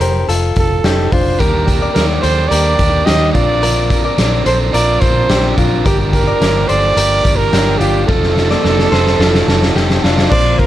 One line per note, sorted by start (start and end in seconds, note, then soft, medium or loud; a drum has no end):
0.00 0.23 F1 medium
0.00 0.29 G4 medium
0.00 0.28 A#4 medium
0.00 0.29 C5 medium
0.00 closed hi-hat medium
0.28 0.51 F1 medium
0.28 0.82 F4 medium
0.28 0.81 A4 medium
0.28 closed hi-hat medium
0.56 0.79 F1 medium
0.56 1.14 A4 medium
0.56 kick medium
0.56 closed hi-hat medium
0.84 1.07 F1 loud
0.84 1.13 D#4 medium
0.84 1.13 G4 medium
0.84 snare loud
0.84 closed hi-hat medium
1.12 1.35 F1 medium
1.12 1.41 D4 medium
1.12 1.41 F4 medium
1.12 1.41 C5 medium
1.12 kick medium
1.12 open hi-hat medium
1.39 1.86 D#2 loud
1.39 1.67 D#3 medium
1.39 1.68 G3 medium
1.39 1.68 A#3 medium
1.39 1.68 D4 medium
1.39 1.80 G4 medium
1.39 1.66 G4 medium
1.39 1.93 A#4 medium
1.39 1.80 A#4 medium
1.39 kick loud
1.39 closed hi-hat medium
1.67 1.95 A#3 soft
1.67 1.96 D4 soft
1.67 1.95 G4 medium
1.67 kick medium
1.67 closed hi-hat medium
1.82 2.22 A#4 medium
1.82 2.21 D5 medium
1.93 2.19 D#2 medium
1.93 2.23 D#3 medium
1.93 2.24 G3 medium
1.93 2.24 A#3 medium
1.93 2.24 D4 medium
1.93 2.06 A#4 medium
1.93 snare loud
1.93 closed hi-hat medium
1.97 2.22 G4 medium
2.20 2.46 D#2 medium
2.20 2.51 G4 soft
2.20 2.52 A4 medium
2.20 2.50 C5 medium
2.20 2.51 C5 medium
2.20 closed hi-hat medium
2.25 2.52 A#3 soft
2.25 2.52 D4 soft
2.48 2.74 D#2 loud
2.48 2.79 G3 medium
2.48 3.04 G4 medium
2.48 3.04 A#4 medium
2.48 3.07 D5 medium
2.48 closed hi-hat medium
2.53 2.80 A#3 medium
2.53 2.79 D4 medium
2.53 2.77 G4 medium
2.79 3.02 D#2 loud
2.79 3.06 A#3 soft
2.79 3.07 D4 soft
2.79 3.07 G4 medium
2.79 kick medium
2.79 closed hi-hat medium
3.05 3.30 D#2 loud
3.05 3.34 D#3 medium
3.05 3.35 G3 medium
3.05 3.35 A#3 medium
3.05 3.33 D4 medium
3.05 3.35 D#4 medium
3.05 3.34 G4 medium
3.05 3.33 G4 medium
3.05 3.32 D#5 loud
3.05 snare loud
3.05 closed hi-hat medium
3.33 4.04 A#1 loud
3.33 3.62 C4 soft
3.33 3.63 D4 soft
3.33 3.63 D4 medium
3.33 3.62 F4 medium
3.33 3.62 A#4 medium
3.33 4.14 D5 loud
3.33 kick medium
3.33 closed hi-hat medium
3.37 3.62 F3 soft
3.62 3.90 A#2 medium
3.62 3.91 D3 medium
3.62 3.91 F3 medium
3.62 3.91 C4 medium
3.62 3.90 D4 medium
3.62 4.03 F4 medium
3.62 4.02 A#4 medium
3.62 3.89 A#4 medium
3.62 closed hi-hat medium
3.90 4.17 F3 soft
3.90 4.17 C4 medium
3.90 4.18 D4 medium
3.90 4.18 A#4 medium
3.90 kick medium
3.90 closed hi-hat medium
4.05 4.45 A#4 medium
4.05 4.44 D5 medium
4.17 4.41 A#1 medium
4.17 4.46 A#2 medium
4.17 4.46 D3 medium
4.17 4.46 F3 medium
4.17 4.46 C4 medium
4.17 4.45 D4 loud
4.17 4.44 A#4 medium
4.17 snare loud
4.17 closed hi-hat medium
4.45 4.69 A#1 medium
4.45 4.70 F3 soft
4.45 4.72 C4 soft
4.45 4.73 D4 soft
4.45 4.75 A4 medium
4.45 4.74 A#4 medium
4.45 4.59 C5 medium
4.45 4.74 C5 medium
4.45 closed hi-hat medium
4.72 4.97 A#1 medium
4.72 5.01 F3 medium
4.72 5.01 C4 medium
4.72 5.00 D4 medium
4.72 5.27 F4 medium
4.72 5.27 A#4 medium
4.72 4.99 A#4 medium
4.72 5.02 D5 loud
4.72 closed hi-hat medium
5.00 5.25 A#1 medium
5.00 5.28 F3 soft
5.00 5.29 C4 soft
5.00 5.30 D4 medium
5.00 5.29 A#4 medium
5.00 5.57 C5 loud
5.00 kick medium
5.00 closed hi-hat medium
5.29 5.53 A#1 loud
5.29 5.57 A#2 medium
5.29 5.58 D3 medium
5.29 5.58 F3 medium
5.29 5.58 C4 medium
5.29 5.57 D4 medium
5.29 5.58 D4 medium
5.29 5.58 G4 medium
5.29 5.55 A#4 medium
5.29 snare loud
5.29 closed hi-hat medium
5.57 5.81 A#1 medium
5.57 5.85 F3 soft
5.57 5.86 C4 soft
5.57 5.86 D4 soft
5.57 5.86 D4 medium
5.57 5.86 F4 medium
5.57 5.85 A#4 medium
5.57 kick medium
5.57 closed hi-hat medium
5.85 6.32 G1 loud
5.85 6.13 G2 medium
5.85 6.13 D3 medium
5.85 6.14 F3 medium
5.85 6.14 A#3 medium
5.85 6.13 D4 medium
5.85 5.98 G4 medium
5.85 6.26 G4 medium
5.85 6.11 G4 medium
5.85 6.25 A#4 loud
5.85 kick loud
5.85 closed hi-hat medium
6.12 6.41 F3 soft
6.12 6.41 A#3 soft
6.12 6.42 D4 medium
6.12 6.41 G4 medium
6.12 6.70 A#4 loud
6.12 kick medium
6.12 closed hi-hat medium
6.27 6.68 A#4 medium
6.27 6.67 D5 medium
6.41 6.64 G1 medium
6.41 6.69 G2 medium
6.41 6.70 D3 medium
6.41 6.70 F3 medium
6.41 6.70 A#3 medium
6.41 6.69 D4 medium
6.41 6.68 G4 medium
6.41 snare loud
6.41 closed hi-hat loud
6.68 6.92 G1 medium
6.68 6.96 A#3 soft
6.68 6.98 D4 medium
6.68 6.97 G4 medium
6.68 6.98 A4 soft
6.68 6.97 C5 medium
6.68 7.38 D5 loud
6.68 closed hi-hat medium
6.72 6.95 F3 soft
6.96 7.20 G1 loud
6.96 7.24 F3 medium
6.96 7.25 A#3 medium
6.96 7.25 D4 medium
6.96 7.50 G4 medium
6.96 7.23 G4 medium
6.96 7.50 A#4 medium
6.96 closed hi-hat medium
7.24 7.48 G1 medium
7.24 7.53 F3 soft
7.24 7.53 A#3 medium
7.24 7.53 D4 soft
7.24 7.53 G4 medium
7.24 kick medium
7.24 closed hi-hat medium
7.36 7.80 A#4 loud
7.53 7.76 G1 medium
7.53 7.81 G2 medium
7.53 7.81 D3 medium
7.53 7.81 F3 medium
7.53 7.81 A#3 medium
7.53 7.81 D4 medium
7.53 7.80 D4 medium
7.53 7.80 G4 medium
7.53 7.79 G4 medium
7.53 snare loud
7.53 closed hi-hat medium
7.78 8.03 G1 loud
7.78 8.09 D4 medium
7.78 8.08 F4 medium
7.78 8.06 G4 medium
7.78 8.08 G4 medium
7.78 closed hi-hat medium
7.82 8.07 F3 soft
7.82 8.09 A#3 soft
8.06 8.54 F1 loud
8.06 8.36 F3 medium
8.06 8.37 C4 medium
8.06 8.36 D#4 medium
8.06 8.48 F4 medium
8.06 9.98 A4 medium
8.06 8.48 A4 loud
8.06 kick loud
8.06 snare medium
8.10 8.34 A4 loud
8.23 snare soft
8.36 8.64 C4 soft
8.36 8.65 D#4 medium
8.36 8.64 A4 medium
8.36 snare medium
8.50 8.90 A#3 medium
8.50 8.90 D5 medium
8.50 snare medium
8.64 8.87 F1 medium
8.64 8.92 F3 medium
8.64 8.93 C4 medium
8.64 8.93 D#4 medium
8.64 8.91 A4 medium
8.64 snare medium
8.79 snare medium
8.92 9.15 F1 medium
8.92 9.19 C4 medium
8.92 9.20 D#4 medium
8.92 9.20 A4 medium
8.92 9.19 A4 medium
8.92 9.20 C5 medium
8.92 snare medium
9.07 snare medium
9.19 9.42 F1 loud
9.19 9.48 F3 medium
9.19 9.48 C4 medium
9.19 9.49 D#4 medium
9.19 9.73 F4 medium
9.19 9.72 A4 medium
9.19 9.47 A4 medium
9.19 snare medium
9.35 snare medium
9.48 9.71 F1 loud
9.48 9.75 C4 medium
9.48 9.76 D#4 medium
9.48 9.76 A4 medium
9.48 snare medium
9.62 snare medium
9.75 9.99 F1 loud
9.75 10.04 F3 medium
9.75 10.04 C4 medium
9.75 10.04 D#4 medium
9.75 10.04 D#4 loud
9.75 10.04 G4 medium
9.75 10.01 A4 medium
9.75 snare medium
9.90 snare medium
10.02 10.27 F1 medium
10.02 10.33 C4 soft
10.02 10.32 D4 medium
10.02 10.32 D#4 medium
10.02 10.32 F4 medium
10.02 10.31 A4 medium
10.02 snare medium
10.18 snare medium
10.31 10.55 A#1 loud
10.31 10.67 D3 medium
10.31 10.67 A#3 medium
10.31 10.67 C4 medium
10.31 10.67 F4 medium
10.31 10.67 C5 loud
10.31 10.61 D5 loud
10.31 kick loud
10.31 crash loud
10.59 10.67 A#4 loud
10.59 kick medium
10.59 ride medium